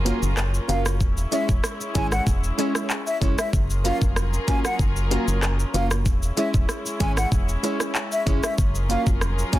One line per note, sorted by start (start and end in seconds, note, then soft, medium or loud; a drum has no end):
0.00 0.12 F#1 loud
0.00 0.98 F#3 medium
0.00 3.49 C#4 medium
0.00 0.98 F4 medium
0.00 0.98 G#4 medium
0.00 0.98 A#4 medium
0.00 impact medium
0.05 0.19 A#3 loud
0.05 0.21 A#3 medium
0.05 0.19 C#4 medium
0.05 0.22 C#4 medium
0.05 0.19 F4 medium
0.05 0.21 F4 medium
0.05 0.19 F#4 medium
0.05 0.19 A#4 loud
0.05 closed hi-hat medium
0.05 shaker medium
0.22 0.59 F#1 loud
0.22 muted nylon-string guitar stroke soft
0.22 shaker medium
0.37 cross-stick loud
0.37 clap loud
0.37 shaker medium
0.54 shaker medium
0.68 1.02 F#1 medium
0.68 0.82 A#3 medium
0.68 0.84 A#3 medium
0.68 0.82 C#4 medium
0.68 0.85 C#4 medium
0.68 0.82 F4 medium
0.68 0.84 F4 medium
0.68 0.83 F#4 medium
0.68 0.83 A#4 medium
0.68 0.80 F5 medium
0.68 closed hi-hat medium
0.68 shaker medium
0.85 muted nylon-string guitar stroke medium
0.85 cross-stick loud
0.85 shaker medium
1.00 1.26 E1 loud
1.00 3.51 G#3 medium
1.00 3.51 E4 medium
1.00 kick loud
1.00 shaker medium
1.17 shaker medium
1.31 1.45 G#3 medium
1.31 1.48 G#3 medium
1.31 1.45 C#4 medium
1.31 1.48 C#4 medium
1.31 1.45 E4 medium
1.31 1.48 E4 medium
1.31 1.46 G#4 medium
1.31 1.46 C#5 medium
1.31 1.44 E5 medium
1.31 closed hi-hat medium
1.31 shaker medium
1.49 1.61 E1 medium
1.49 kick loud
1.49 shaker medium
1.64 cross-stick loud
1.64 shaker medium
1.80 muted nylon-string guitar stroke soft
1.80 shaker medium
1.95 2.20 G#1 medium
1.95 2.08 G#3 medium
1.95 2.11 G#3 medium
1.95 2.08 C#4 medium
1.95 2.11 C#4 medium
1.95 2.09 E4 medium
1.95 2.12 E4 medium
1.95 2.09 G#4 medium
1.95 2.09 C#5 medium
1.95 2.07 G#5 medium
1.95 kick loud
1.95 closed hi-hat medium
1.95 shaker medium
2.12 2.22 F#5 medium
2.12 cross-stick medium
2.12 shaker medium
2.27 2.52 E1 loud
2.27 kick loud
2.27 shaker medium
2.44 shaker medium
2.58 2.71 G#3 loud
2.58 2.74 G#3 medium
2.58 2.72 C#4 medium
2.58 2.74 C#4 loud
2.58 2.72 E4 medium
2.58 2.74 E4 loud
2.58 2.72 G#4 medium
2.58 2.72 C#5 loud
2.58 closed hi-hat medium
2.58 shaker medium
2.75 muted nylon-string guitar stroke medium
2.75 cross-stick medium
2.75 shaker medium
2.90 clap loud
2.90 shaker medium
3.07 3.17 E5 medium
3.07 shaker medium
3.21 3.35 F#1 loud
3.21 3.35 G#3 medium
3.21 3.37 G#3 medium
3.21 3.35 C#4 medium
3.21 3.37 C#4 medium
3.21 3.35 E4 medium
3.21 3.37 E4 medium
3.21 3.35 G#4 medium
3.21 3.35 C#5 medium
3.21 kick medium
3.21 closed hi-hat medium
3.21 shaker medium
3.38 3.49 E5 medium
3.38 muted nylon-string guitar stroke medium
3.38 cross-stick loud
3.38 shaker medium
3.53 3.92 F#1 loud
3.53 6.03 F#3 medium
3.53 9.59 C#4 medium
3.53 6.03 F4 medium
3.53 6.03 G#4 medium
3.53 6.03 A#4 medium
3.53 kick loud
3.53 shaker medium
3.70 shaker medium
3.84 3.98 A#3 medium
3.84 4.00 A#3 medium
3.84 3.98 C#4 medium
3.84 4.01 C#4 medium
3.84 3.98 F4 medium
3.84 4.01 F4 loud
3.84 3.98 F#4 medium
3.84 3.98 A#4 medium
3.84 3.96 F5 medium
3.84 closed hi-hat medium
3.84 shaker medium
4.02 4.38 F1 medium
4.02 kick loud
4.02 shaker medium
4.16 cross-stick loud
4.16 shaker medium
4.33 muted nylon-string guitar stroke soft
4.33 shaker medium
4.47 4.61 A#3 medium
4.47 4.63 A#3 medium
4.47 4.61 C#4 medium
4.47 4.64 C#4 loud
4.47 4.61 F4 medium
4.47 4.64 F4 medium
4.47 4.62 F#4 medium
4.47 4.62 A#4 medium
4.47 4.59 G#5 medium
4.47 kick loud
4.47 closed hi-hat medium
4.47 shaker medium
4.65 4.75 F#5 medium
4.65 cross-stick loud
4.65 shaker medium
4.79 5.18 F#1 loud
4.79 kick loud
4.79 shaker medium
4.96 shaker medium
5.10 5.24 A#3 medium
5.10 5.27 A#3 medium
5.10 5.24 C#4 medium
5.10 5.27 C#4 medium
5.10 5.24 F4 medium
5.10 5.26 F4 loud
5.10 5.25 F#4 medium
5.10 5.25 A#4 loud
5.10 closed hi-hat medium
5.10 shaker medium
5.28 5.65 F#1 loud
5.28 shaker medium
5.43 cross-stick loud
5.43 clap loud
5.43 shaker medium
5.59 shaker medium
5.74 6.07 F#1 medium
5.74 5.87 A#3 medium
5.74 5.90 A#3 medium
5.74 5.87 C#4 medium
5.74 5.90 C#4 medium
5.74 5.88 F4 medium
5.74 5.90 F4 medium
5.74 5.88 F#4 medium
5.74 5.88 A#4 medium
5.74 5.86 F5 medium
5.74 closed hi-hat medium
5.74 shaker medium
5.91 cross-stick loud
5.91 shaker medium
6.06 6.31 E1 loud
6.06 8.56 G#3 medium
6.06 8.56 E4 medium
6.06 kick loud
6.06 shaker medium
6.23 shaker medium
6.37 6.50 G#3 medium
6.37 6.53 G#3 loud
6.37 6.51 C#4 medium
6.37 6.53 C#4 loud
6.37 6.51 E4 medium
6.37 6.53 E4 loud
6.37 6.51 G#4 medium
6.37 6.51 C#5 medium
6.37 6.49 E5 medium
6.37 closed hi-hat medium
6.37 shaker medium
6.54 6.66 E1 medium
6.54 kick loud
6.54 shaker medium
6.69 cross-stick medium
6.69 shaker medium
6.85 muted nylon-string guitar stroke medium
6.85 shaker medium
7.00 7.26 G#1 loud
7.00 7.13 G#3 medium
7.00 7.16 G#3 loud
7.00 7.14 C#4 medium
7.00 7.16 C#4 medium
7.00 7.14 E4 medium
7.00 7.17 E4 loud
7.00 7.14 G#4 medium
7.00 7.14 C#5 medium
7.00 7.12 G#5 medium
7.00 kick loud
7.00 closed hi-hat medium
7.00 shaker medium
7.17 7.28 F#5 medium
7.17 cross-stick loud
7.17 shaker medium
7.32 7.57 E1 loud
7.32 kick loud
7.32 shaker medium
7.49 shaker medium
7.63 7.77 G#3 medium
7.63 7.79 G#3 medium
7.63 7.77 C#4 medium
7.63 7.80 C#4 loud
7.63 7.77 E4 medium
7.63 7.79 E4 loud
7.63 7.77 G#4 medium
7.63 7.77 C#5 loud
7.63 closed hi-hat medium
7.63 shaker medium
7.80 muted nylon-string guitar stroke soft
7.80 cross-stick medium
7.80 shaker medium
7.95 clap loud
7.95 shaker medium
8.12 8.22 E5 medium
8.12 shaker medium
8.26 8.40 F#1 loud
8.26 8.40 G#3 medium
8.26 8.42 G#3 medium
8.26 8.40 C#4 medium
8.26 8.43 C#4 medium
8.26 8.40 E4 medium
8.26 8.42 E4 medium
8.26 8.40 G#4 medium
8.26 8.41 C#5 medium
8.26 kick loud
8.26 closed hi-hat medium
8.26 shaker medium
8.43 8.54 E5 medium
8.43 muted nylon-string guitar stroke soft
8.43 cross-stick loud
8.43 shaker medium
8.58 8.97 F#1 loud
8.58 9.59 F#3 medium
8.58 9.59 F4 medium
8.58 9.59 G#4 medium
8.58 9.59 A#4 medium
8.58 kick loud
8.58 shaker medium
8.75 shaker medium
8.89 9.03 A#3 medium
8.89 9.05 A#3 medium
8.89 9.03 C#4 medium
8.89 9.06 C#4 loud
8.89 9.03 F4 medium
8.89 9.06 F4 loud
8.89 9.04 F#4 medium
8.89 9.04 A#4 medium
8.89 9.01 F5 medium
8.89 closed hi-hat medium
8.89 shaker medium
9.06 9.44 F1 medium
9.06 kick loud
9.06 shaker medium
9.21 cross-stick loud
9.21 shaker medium
9.38 muted nylon-string guitar stroke medium
9.38 shaker medium
9.52 9.59 A#3 medium
9.52 9.59 C#4 medium
9.52 9.59 F4 medium
9.52 9.59 F4 loud
9.52 9.59 F#4 medium
9.52 9.59 C#5 medium
9.52 9.59 G#5 medium
9.52 kick loud
9.52 closed hi-hat medium
9.52 shaker medium